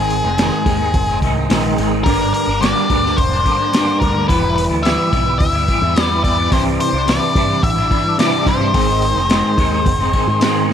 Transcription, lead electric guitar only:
Already playing: G#4
2.04 A#4
2.34 A#4
2.61 D5
3.17 C5
4.00 A#4
4.28 B4
4.56 B4
4.83 E5
5.39 E5
6.02 D5
6.24 D5
6.53 C5
6.81 C5
7.09 D5
7.63 E5
8.19 D5
8.47 C5

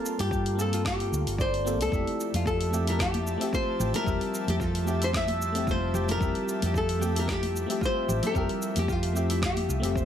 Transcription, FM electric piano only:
Already playing: A#3 C4 F4 A4 A5
0.55 A#3 C4 F4
0.61 A4
1.65 A#3 C4 F4 A4
1.90 A3 C4 E4
1.95 G4
2.70 A3 C4 E5
2.75 G4
3.38 A3 C4 E5
3.43 G4
4.04 G3 C4 E5
4.09 G4
4.85 A3 C4 E5
4.90 G4
5.53 A3 C4
5.57 G4 E5
6.18 G3 C4 E5
6.24 G4
7.00 A3 C4 E5
7.05 G4
7.66 A3 C4 E5
7.71 G4
8.32 G3 C4 E5
8.37 G4
9.13 A3 C4 E5
9.18 G4
9.80 A3 C4 E5
9.85 G4

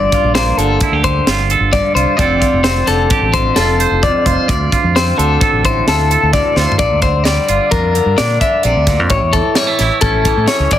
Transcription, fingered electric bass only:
0.24 A#1
0.57 G1
0.91 D2
1.26 G1
1.60 G1
1.95 C2
2.19 F1
2.53 F1
2.88 F1
3.21 A1
3.57 F1
3.91 F1
4.26 F1
4.48 D2
4.84 F2
5.18 D2
5.53 A1
5.87 D2
6.23 D2
6.56 D2
6.79 A#1
6.91 D2
7.49 G1
7.71 F2
8.06 G2
8.19 A#2
8.65 A#1
8.76 D2
9.00 F2
9.10 A1
9.21 E2
9.80 A1
10.02 A1
10.37 A2
10.60 C#2
10.71 A1

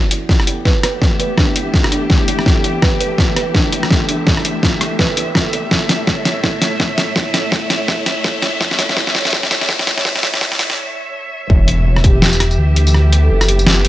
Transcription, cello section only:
Already playing: E3
0.07 B3
0.28 G4
0.95 E5
5.72 A2
5.87 A3
6.02 C#5
11.50 E3
11.82 B3
12.05 G4

